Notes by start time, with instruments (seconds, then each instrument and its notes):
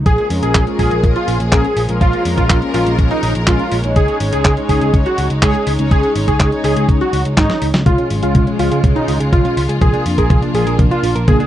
0.05 picked electric bass A#1, string section F3 G#3 A#3 C#4 G#4, analog synth lead G#4, kick, closed hi-hat
0.18 closed hi-hat
0.30 picked electric bass F2, analog polysynth G#3 C#4 F4 A#4, open hi-hat
0.42 picked electric bass A#1, analog synth lead G#4, closed hi-hat
0.55 picked electric bass A#1, kick, clap, closed hi-hat
0.67 analog polysynth G#3 C#4 F4 A#4, closed hi-hat
0.79 picked electric bass A#1, analog synth lead G#4, kick, open hi-hat
0.91 picked electric bass A#1, closed hi-hat
1.03 picked electric bass A#1, analog polysynth G#3 C#4 F4 A#4, kick, closed hi-hat
1.16 analog synth lead F4, closed hi-hat
1.28 picked electric bass A#1, open hi-hat
1.40 picked electric bass A#1, closed hi-hat
1.52 analog polysynth G#3 C#4 F4 A#4, analog synth lead G#4, kick, clap, closed hi-hat
1.64 closed hi-hat
1.77 picked electric bass A#1, open hi-hat
1.89 picked electric bass A#1, analog polysynth G#3 C#4 F4 A#4, closed hi-hat
2.01 picked electric bass A#1, analog synth lead F4, string section A#4, kick, closed hi-hat
2.13 closed hi-hat
2.25 picked electric bass F2, analog polysynth G#3 C#4 F4 A#4, open hi-hat
2.37 picked electric bass A#1, analog synth lead F4, kick, closed hi-hat
2.50 picked electric bass A#1, kick, clap, closed hi-hat
2.62 analog polysynth G#3 C#4 F4 A#4, closed hi-hat
2.74 picked electric bass A#1, analog synth lead F4, clap, open hi-hat
2.87 picked electric bass A#1, closed hi-hat
2.99 picked electric bass A#1, analog polysynth G#3 C#4 F4 A#4, kick, closed hi-hat
3.11 analog synth lead D#4, closed hi-hat
3.23 picked electric bass A#1, open hi-hat
3.35 picked electric bass A#1, closed hi-hat
3.47 analog polysynth G#3 C#4 F4 A#4, analog synth lead F4, kick, clap, closed hi-hat
3.59 closed hi-hat
3.72 picked electric bass A#1, open hi-hat
3.84 picked electric bass A#1, analog polysynth G#3 C#4 D#4 C#5, closed hi-hat
3.96 picked electric bass C#2, string section D#4, analog synth lead G#4, kick, closed hi-hat
4.08 closed hi-hat
4.20 picked electric bass G#1, analog polysynth G#3 C#4 D#4 C#5, open hi-hat
4.33 picked electric bass C#2, analog synth lead G#4, closed hi-hat
4.45 picked electric bass C#2, kick, clap, closed hi-hat
4.57 analog polysynth G#3 C#4 D#4 C#5, closed hi-hat
4.69 picked electric bass C#2, analog synth lead G#4, kick, open hi-hat
4.81 picked electric bass C#2, closed hi-hat
4.94 picked electric bass C#2, analog polysynth G#3 C#4 D#4 C#5, kick, closed hi-hat
5.06 analog synth lead F#4, closed hi-hat
5.18 picked electric bass C#2, open hi-hat
5.30 picked electric bass C#2, closed hi-hat
5.42 picked electric bass C#2, analog polysynth G#3 C#4 D#4 C#5, analog synth lead G#4, kick, clap, closed hi-hat
5.55 closed hi-hat
5.67 picked electric bass C#2, open hi-hat
5.79 picked electric bass C#2, analog polysynth G#3 C#4 D#4 C#5, closed hi-hat
5.91 picked electric bass C#2, analog synth lead G#4, kick, closed hi-hat
6.03 closed hi-hat
6.15 picked electric bass G#1, analog polysynth G#3 C#4 D#4 C#5, open hi-hat
6.28 picked electric bass C#2, analog synth lead G#4, kick, closed hi-hat
6.40 picked electric bass C#2, kick, clap, closed hi-hat
6.52 analog polysynth G#3 C#4 D#4 C#5, closed hi-hat
6.64 picked electric bass C#2, analog synth lead G#4, clap, open hi-hat
6.76 picked electric bass C#2, closed hi-hat
6.89 picked electric bass C#2, analog polysynth G#3 C#4 D#4 C#5, kick, closed hi-hat
7.01 analog synth lead F#4, closed hi-hat
7.13 picked electric bass C#2, open hi-hat
7.25 picked electric bass C#2, closed hi-hat
7.37 picked electric bass G#1, analog polysynth G#3 C#4 D#4 C#5, analog synth lead D#4, kick, snare, clap, closed hi-hat
7.50 snare, closed hi-hat
7.62 picked electric bass C#2, open hi-hat
7.74 picked electric bass C#2, snare, closed hi-hat
7.86 picked electric bass C#2, string section G#3 C#4 F4, clean electric guitar G#3, analog synth lead F4, kick, closed hi-hat, mid tom
7.98 clean electric guitar C#4, closed hi-hat
8.10 picked electric bass G#1, analog polysynth F3 G#3 C#4 G#4, clean electric guitar F4, open hi-hat
8.23 picked electric bass C#2, analog synth lead F4, clean electric guitar G#4, closed hi-hat
8.35 picked electric bass C#2, clean electric guitar G#3, kick, closed hi-hat, mid tom
8.47 analog polysynth F3 G#3 C#4 G#4, clean electric guitar C#4, closed hi-hat
8.59 picked electric bass C#2, analog synth lead F4, clean electric guitar F4, open hi-hat
8.72 picked electric bass C#2, clean electric guitar G#4, closed hi-hat
8.84 picked electric bass C#2, analog polysynth F3 G#3 C#4 G#4, clean electric guitar G#3, kick, closed hi-hat, mid tom
8.96 clean electric guitar C#4, analog synth lead D#4, closed hi-hat
9.08 picked electric bass C#2, clean electric guitar F4, open hi-hat
9.20 picked electric bass C#2, clean electric guitar G#4, closed hi-hat
9.32 picked electric bass C#2, analog polysynth F3 G#3 C#4 G#4, clean electric guitar G#3, analog synth lead F4, kick, closed hi-hat, mid tom
9.45 clean electric guitar C#4, closed hi-hat
9.57 picked electric bass C#2, clean electric guitar F4, open hi-hat
9.69 picked electric bass C#2, analog polysynth F3 A#3 D4 A#4, clean electric guitar G#4, closed hi-hat
9.81 picked electric bass A#1, string section A#3 D4, clean electric guitar A#3, analog synth lead G#4, kick, closed hi-hat, mid tom
9.93 clean electric guitar D4, closed hi-hat
10.06 picked electric bass F2, analog polysynth F3 A#3 D4 A#4, clean electric guitar F4, open hi-hat
10.18 picked electric bass A#1, analog synth lead G#4, clean electric guitar A#4, kick, closed hi-hat
10.30 picked electric bass A#1, clean electric guitar A#3, kick, closed hi-hat, mid tom
10.42 analog polysynth F3 A#3 D4 A#4, clean electric guitar D4, closed hi-hat
10.54 picked electric bass A#1, clean electric guitar F4, analog synth lead G#4, open hi-hat
10.67 picked electric bass A#1, clean electric guitar A#4, closed hi-hat
10.79 picked electric bass A#1, analog polysynth F3 A#3 D4 A#4, clean electric guitar A#3, kick, closed hi-hat, mid tom
10.91 clean electric guitar D4, analog synth lead F4, closed hi-hat
11.03 picked electric bass A#1, clean electric guitar F4, open hi-hat
11.15 picked electric bass A#1, clean electric guitar A#4, closed hi-hat
11.28 analog polysynth F3 A#3 D4 A#4, clean electric guitar A#3, analog synth lead G#4, kick, closed hi-hat, mid tom
11.40 clean electric guitar D4, closed hi-hat